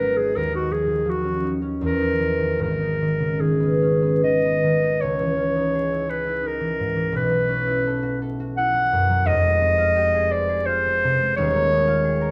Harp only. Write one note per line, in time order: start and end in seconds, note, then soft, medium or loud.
0.00 0.40 G#1 medium
0.00 1.88 F#3 soft
0.00 0.40 B3 soft
0.00 0.17 D#4 soft
0.18 0.52 D#4 soft
0.36 1.87 D#2 soft
0.54 1.42 D#4 soft
0.70 1.04 F3 soft
0.87 1.20 D#3 soft
1.05 1.85 F3 soft
1.25 1.60 C#4 soft
1.44 1.77 D#4 soft
1.62 1.86 C#4 soft
1.81 2.64 E2 soft
2.00 2.79 D#4 soft
2.19 2.64 E3 soft
2.38 2.74 D#3 soft
2.59 5.02 G#1 soft
2.80 4.81 D#4 soft
3.02 3.39 D#3 soft
3.19 3.54 C#3 soft
3.41 4.22 D#3 soft
3.60 4.01 B3 soft
3.82 4.17 C#4 soft
4.02 4.44 B3 soft
4.23 4.62 D#3 soft
4.45 5.05 B3 soft
4.63 5.04 D#3 soft
4.83 5.55 D#4 soft
5.02 7.19 C#2 medium
5.19 6.59 E3 soft
5.37 7.47 C#4 soft
5.56 6.42 D#4 soft
5.75 6.08 G#4 soft
5.93 6.26 E4 soft
6.09 7.18 G#4 soft
6.27 7.66 E4 soft
6.43 7.17 D#4 soft
6.60 6.95 E3 soft
6.79 7.18 G#2 soft
6.96 7.18 E3 soft
7.12 9.29 B1 medium
7.30 8.72 F#3 soft
7.48 9.29 C#4 soft
7.67 8.57 E4 medium
7.87 8.21 A4 soft
8.03 8.39 F#4 medium
8.22 9.30 A4 soft
8.40 9.30 F#4 soft
8.58 9.30 E4 soft
8.73 9.09 F#3 soft
8.93 9.30 F#2 medium
9.10 9.30 F#3 soft
9.25 11.37 F1 medium
9.25 11.38 F2 medium
9.45 10.85 G#3 soft
9.61 11.38 C4 soft
9.78 10.66 F4 medium
9.96 11.38 G4 medium
10.15 10.48 G#4 medium
10.31 11.38 C5 medium
10.49 12.03 G#4 medium
10.67 11.86 F4 medium
10.86 11.19 G#3 soft
11.04 11.40 C3 medium
11.20 12.31 G#3 medium
11.38 12.31 D#1 medium
11.38 12.31 D#2 medium
11.55 12.31 A#3 medium
11.72 12.31 D#4 medium
11.87 12.31 F4 medium
12.05 12.31 G#4 medium
12.21 12.31 A#4 medium